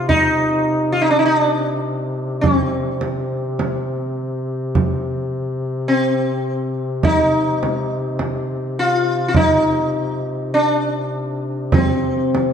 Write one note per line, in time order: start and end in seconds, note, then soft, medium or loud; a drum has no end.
0.00 12.53 C3 soft
0.09 0.92 D#4 medium
0.09 frame drum soft
0.92 1.01 F4 medium
1.01 1.10 D#4 medium
1.10 1.18 D4 medium
1.19 1.25 D#4 medium
1.26 2.41 D4 medium
2.41 4.12 C4 medium
2.41 frame drum medium
3.01 frame drum soft
3.59 frame drum soft
4.75 frame drum medium
5.88 7.04 C4 medium
7.03 8.16 D#4 medium
7.03 frame drum medium
7.63 frame drum soft
8.19 frame drum medium
8.79 9.27 F4 medium
9.28 9.35 F4 medium
9.34 10.49 D#4 medium
9.34 frame drum medium
10.54 11.74 D4 medium
11.72 12.53 C4 medium
11.72 frame drum medium
12.35 frame drum soft